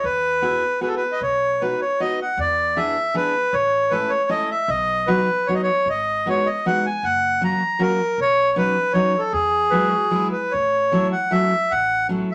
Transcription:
0.04 upright bass E2, accordion B4
0.42 steel-string acoustic guitar B3 E4 F#4 G#4
0.81 steel-string acoustic guitar B3 E4 F#4 G#4, accordion B4
0.87 accordion A4
0.96 accordion B4
1.12 accordion D#5
1.21 upright bass B1, accordion C#5
1.61 steel-string acoustic guitar B3 D#4 F#4 B4, accordion B4
1.81 accordion C#5
2.00 steel-string acoustic guitar B3 D#4 F#4 B4, accordion D#5
2.22 accordion F#5
2.37 upright bass E2, accordion D5
2.76 steel-string acoustic guitar B3 D4 E4 G#4, accordion E5
3.14 steel-string acoustic guitar B3 D4 E4 G#4, accordion B4
3.53 upright bass A1, accordion C#5
3.90 steel-string acoustic guitar A3 C#4 E4 A4, accordion B4
4.10 accordion C#5
4.29 steel-string acoustic guitar A3 C#4 E4 A4, accordion D#5
4.51 accordion E5
4.68 upright bass B1, accordion D#5
5.07 steel-string acoustic guitar F#3 B3 D#4 F#4, accordion B4
5.47 steel-string acoustic guitar F#3 B3 D#4 F#4, accordion C#5
5.55 accordion D#5
5.63 accordion C#5
5.86 upright bass G#1, accordion D#5
6.26 steel-string acoustic guitar G#3 B3 D#4 F#4, accordion C#5
6.46 accordion D#5
6.66 steel-string acoustic guitar G#3 B3 D#4 F#4, accordion F#5
6.86 accordion G#5
7.03 upright bass F#1, accordion F#5
7.41 steel-string acoustic guitar F#3 A#3 C#4 F#4, accordion A#5
7.79 steel-string acoustic guitar F#3 A#3 C#4 F#4, accordion A#4
8.18 upright bass B1, accordion C#5
8.56 steel-string acoustic guitar F#3 B3 C#4 D#4, accordion B4
8.93 steel-string acoustic guitar F#3 B3 C#4 D#4, accordion C#5
9.18 accordion A4
9.32 upright bass E2, accordion G#4
9.71 steel-string acoustic guitar F#3 G#3 B3 E4, clarinet B4
9.90 clarinet F#4
10.11 steel-string acoustic guitar F#3 G#3 B3 E4, clarinet E4
10.32 accordion B4
10.52 upright bass A1, accordion C#5
10.92 steel-string acoustic guitar F#3 A3 C#4 E4
11.12 accordion F#5
11.31 steel-string acoustic guitar F#3 A3 C#4 E4, accordion E5
11.71 upright bass A1, accordion F#5
12.09 steel-string acoustic guitar F#3 A3 C#4 E4

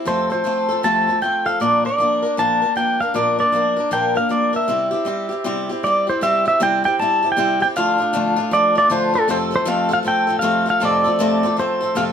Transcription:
0.05 steel-string acoustic guitar F2 C3 F3 A3 C4 A4, pedal steel guitar C5
0.30 steel-string acoustic guitar F3 A3 C4 A4, pedal steel guitar C5
0.44 steel-string acoustic guitar F3 A3 C4 A4
0.69 steel-string acoustic guitar F3 A3 C4 A4
0.83 steel-string acoustic guitar F2 C3 F3 A3 C4 A4, pedal steel guitar A5
1.08 steel-string acoustic guitar F3 A3 C4 A4
1.22 steel-string acoustic guitar F3 A3 C4 A4, pedal steel guitar G5
1.46 steel-string acoustic guitar F3 A3 C4 A4, pedal steel guitar F5
1.60 steel-string acoustic guitar A#2 F3 A#3 D4 A#4, pedal steel guitar D5
1.85 steel-string acoustic guitar A#3 D4 A#4, pedal steel guitar D5
1.98 steel-string acoustic guitar F3 A#3 D4 A#4
2.22 steel-string acoustic guitar A#3 D4 A#4
2.37 steel-string acoustic guitar A#2 F3 A#3 D4 A#4, pedal steel guitar A5
2.62 steel-string acoustic guitar A#3 D4 A#4
2.76 steel-string acoustic guitar F3 A#3 D4 A#4, pedal steel guitar G5
3.00 steel-string acoustic guitar A#3 D4 A#4, pedal steel guitar F5
3.14 steel-string acoustic guitar A#2 F3 A#3 D4 A#4, pedal steel guitar D5
3.39 steel-string acoustic guitar A#3 D4 A#4, pedal steel guitar D5
3.52 steel-string acoustic guitar F3 A#3 D4 A#4
3.76 steel-string acoustic guitar A#3 D4 A#4
3.91 steel-string acoustic guitar A#2 F3 A#3 D4 A#4, pedal steel guitar G5
4.15 steel-string acoustic guitar A#3 D4 A#4, pedal steel guitar F5
4.29 steel-string acoustic guitar F3 A#3 D4 A#4, pedal steel guitar D5
4.53 steel-string acoustic guitar A#3 D4 A#4, pedal steel guitar E5
4.68 steel-string acoustic guitar C3 G3 C4 E4 G4
4.91 steel-string acoustic guitar C4 E4 G4
5.05 steel-string acoustic guitar G3 C4 E4 G4
5.29 steel-string acoustic guitar C4 E4 G4
5.44 steel-string acoustic guitar C3 G3 C4 E4 G4
5.69 steel-string acoustic guitar C4 E4 G4
5.83 steel-string acoustic guitar G3 C4 E4 G4, pedal steel guitar D5
6.07 steel-string acoustic guitar C4 E4 G4, pedal steel guitar C5
6.21 steel-string acoustic guitar C3 G3 C4 E4 G4, pedal steel guitar E5
6.45 steel-string acoustic guitar C4 E4 G4, pedal steel guitar E5
6.60 steel-string acoustic guitar C3 G3 C4 E4 G4, pedal steel guitar G5
6.84 steel-string acoustic guitar C4 E4 G4, pedal steel guitar G5
6.99 steel-string acoustic guitar G3 C4 E4 G4, pedal steel guitar A5
7.23 steel-string acoustic guitar C4 E4 G4
7.32 pedal steel guitar G5
7.37 steel-string acoustic guitar C3 G3 C4 E4 G4
7.60 steel-string acoustic guitar C4 E4 G4, pedal steel guitar G5
7.76 steel-string acoustic guitar D3 F3 A3 D4 F4, pedal steel guitar F5
7.98 steel-string acoustic guitar A3 D4 F4
8.13 steel-string acoustic guitar D3 F3 A3 D4 F4
8.36 steel-string acoustic guitar A3 D4 F4
8.51 steel-string acoustic guitar F3 A3 D4 F4, pedal steel guitar D5
8.75 steel-string acoustic guitar A3 D4 F4, pedal steel guitar D5
8.89 steel-string acoustic guitar D3 F3 A3 D4 F4, pedal steel guitar C5
9.14 steel-string acoustic guitar A3 D4 F4, pedal steel guitar A4
9.28 steel-string acoustic guitar F2 C3 F3 A3 C4 A4, pedal steel guitar C5
9.51 steel-string acoustic guitar F3 A3 C4 A4
9.56 pedal steel guitar C5
9.65 steel-string acoustic guitar F2 C3 F3 A3 C4 A4, pedal steel guitar F5
9.89 steel-string acoustic guitar F3 A3 C4 A4
9.93 pedal steel guitar F5
10.03 steel-string acoustic guitar F3 A3 C4 A4
10.08 pedal steel guitar G5
10.27 steel-string acoustic guitar F3 A3 C4 A4
10.39 steel-string acoustic guitar F2 C3 F3 A3 C4, pedal steel guitar F5
10.44 steel-string acoustic guitar A4
10.66 steel-string acoustic guitar F3 A3 C4 A4
10.70 pedal steel guitar F5
10.80 steel-string acoustic guitar F2 C3 F3 A3 C4 A4
10.85 pedal steel guitar D5
11.04 steel-string acoustic guitar F3 A3 C4 A4
11.19 steel-string acoustic guitar F2 C3 F3 A3 C4 A4
11.43 steel-string acoustic guitar F3 A3 C4 A4
11.57 steel-string acoustic guitar F3 A3 C4 A4, pedal steel guitar C5
11.81 steel-string acoustic guitar F3 A3 C4 A4
11.95 steel-string acoustic guitar F2 C3 F3 A3 C4 A4, pedal steel guitar F5

